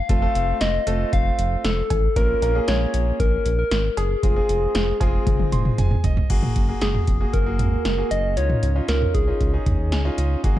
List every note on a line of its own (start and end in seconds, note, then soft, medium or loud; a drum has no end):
0.00 0.63 F5 loud
0.09 0.27 F1 loud
0.09 0.21 A3 medium
0.09 0.21 C4 medium
0.09 0.21 F4 medium
0.09 0.21 A4 medium
0.09 kick loud
0.09 closed hi-hat medium
0.22 0.79 A3 medium
0.22 0.79 C4 medium
0.22 0.79 F4 medium
0.22 0.79 A4 medium
0.35 0.53 F1 loud
0.35 closed hi-hat medium
0.61 0.79 F1 loud
0.61 1.15 D#5 loud
0.61 snare loud
0.61 closed hi-hat medium
0.87 1.05 F1 medium
0.87 1.78 A3 medium
0.87 1.78 C4 medium
0.87 1.78 F4 medium
0.87 1.78 A4 medium
0.87 closed hi-hat medium
1.13 1.31 F1 loud
1.13 1.64 F5 loud
1.13 kick loud
1.13 closed hi-hat medium
1.38 1.57 F1 loud
1.38 closed hi-hat medium
1.64 1.83 F1 loud
1.64 2.18 A4 loud
1.64 snare loud
1.64 closed hi-hat medium
1.90 2.09 A1 medium
1.90 kick medium
1.90 closed hi-hat medium
1.90 cowbell medium
2.16 2.34 A#1 loud
2.16 2.39 A#3 medium
2.16 2.39 C#4 medium
2.16 2.39 F4 medium
2.16 2.39 A#4 medium
2.16 2.70 A#4 loud
2.16 kick loud
2.16 closed hi-hat medium
2.42 2.60 A#1 loud
2.42 2.54 A#3 medium
2.42 2.54 C#4 medium
2.42 2.54 F4 medium
2.42 2.54 A#4 medium
2.42 closed hi-hat medium
2.55 3.47 A#3 medium
2.55 3.47 C#4 medium
2.55 3.47 F4 medium
2.55 3.47 G#4 medium
2.68 2.86 A#1 loud
2.68 3.19 C#5 loud
2.68 snare loud
2.68 closed hi-hat medium
2.94 3.12 A#1 loud
2.94 closed hi-hat medium
3.20 3.38 A#1 loud
3.20 3.56 A#4 medium
3.20 kick loud
3.20 closed hi-hat medium
3.46 3.64 A#1 loud
3.46 closed hi-hat medium
3.59 3.99 A#4 medium
3.71 3.89 G#1 loud
3.71 snare loud
3.71 closed hi-hat medium
3.97 4.15 F#1 loud
3.97 6.04 G#4 medium
3.97 closed hi-hat medium
3.97 cowbell medium
4.23 4.41 F1 loud
4.23 4.35 G#3 medium
4.23 4.35 C4 medium
4.23 4.35 F4 medium
4.23 4.35 G#4 medium
4.23 kick loud
4.23 closed hi-hat medium
4.36 4.93 G#3 medium
4.36 4.93 C4 medium
4.36 4.93 F4 medium
4.36 4.93 G#4 medium
4.49 4.67 F1 loud
4.49 closed hi-hat medium
4.75 4.93 F1 loud
4.75 snare loud
4.75 closed hi-hat medium
5.01 5.19 F1 loud
5.01 5.92 G#3 loud
5.01 5.92 C4 medium
5.01 5.92 F4 medium
5.01 5.92 G#4 loud
5.01 kick loud
5.01 closed hi-hat medium
5.01 cowbell medium
5.27 5.45 F1 loud
5.27 kick loud
5.27 closed hi-hat medium
5.27 high tom medium
5.39 high tom medium
5.52 5.71 F1 loud
5.52 5.77 C6 medium
5.52 closed hi-hat medium
5.52 mid tom medium
5.65 mid tom medium
5.78 5.96 F1 medium
5.78 6.02 G#5 medium
5.78 closed hi-hat medium
5.78 mid tom loud
5.91 mid tom medium
6.04 6.22 F1 loud
6.04 6.28 D#5 medium
6.04 closed hi-hat medium
6.04 floor tom loud
6.17 floor tom loud
6.30 6.48 F#1 loud
6.30 6.64 A#3 medium
6.30 6.64 F#4 medium
6.30 6.64 G#4 medium
6.30 kick loud
6.30 closed hi-hat medium
6.30 crash medium
6.43 mid tom medium
6.56 6.74 F#1 loud
6.56 kick medium
6.56 closed hi-hat medium
6.69 7.15 A#3 medium
6.69 7.15 F#4 medium
6.69 7.15 G#4 medium
6.81 7.00 F#1 loud
6.81 7.35 G#4 medium
6.81 snare loud
6.81 closed hi-hat medium
6.95 mid tom medium
7.07 7.26 F1 medium
7.07 kick medium
7.07 closed hi-hat medium
7.21 7.43 A#3 medium
7.21 7.43 F#4 medium
7.21 7.43 G#4 medium
7.33 7.61 F#1 loud
7.33 8.12 A#4 loud
7.33 kick medium
7.33 closed hi-hat medium
7.46 7.92 A#3 medium
7.46 7.92 F#4 medium
7.46 7.92 G#4 medium
7.59 7.77 G#1 loud
7.59 closed hi-hat medium
7.59 mid tom loud
7.85 8.03 F#1 medium
7.85 snare loud
7.85 closed hi-hat medium
7.98 8.32 A#3 medium
7.98 8.32 F#4 medium
7.98 8.32 G#4 medium
8.11 8.38 F#1 loud
8.11 8.36 D#5 loud
8.11 closed hi-hat medium
8.37 8.55 C#2 loud
8.37 8.71 C#4 medium
8.37 8.71 D#4 medium
8.37 8.71 F4 medium
8.37 8.85 C#5 loud
8.37 closed hi-hat medium
8.50 mid tom loud
8.63 8.81 C#2 loud
8.63 closed hi-hat medium
8.76 9.21 C#4 medium
8.76 9.22 D#4 medium
8.76 9.21 F4 medium
8.88 9.07 C#2 loud
8.88 9.13 A#4 loud
8.88 snare loud
8.88 closed hi-hat medium
9.02 mid tom medium
9.14 9.33 C2 medium
9.14 10.14 G#4 medium
9.14 kick medium
9.14 closed hi-hat medium
9.27 9.50 C#4 medium
9.27 9.50 D#4 medium
9.27 9.50 F4 medium
9.41 9.59 C#2 loud
9.41 kick medium
9.41 closed hi-hat medium
9.54 9.99 C#4 medium
9.54 9.99 D#4 medium
9.54 9.99 G#4 medium
9.66 9.93 D#2 loud
9.66 kick medium
9.66 closed hi-hat medium
9.66 mid tom loud
9.92 10.10 C#2 loud
9.92 10.16 G#5 medium
9.92 snare loud
9.92 closed hi-hat medium
10.05 10.39 C#4 medium
10.05 10.39 D#4 medium
10.05 10.39 F4 loud
10.18 10.36 C#2 loud
10.18 10.42 D#5 medium
10.18 closed hi-hat medium
10.44 10.59 F#1 loud
10.44 10.59 A#3 medium
10.44 10.59 F#4 medium
10.44 10.59 G#4 medium
10.44 kick loud
10.44 closed hi-hat medium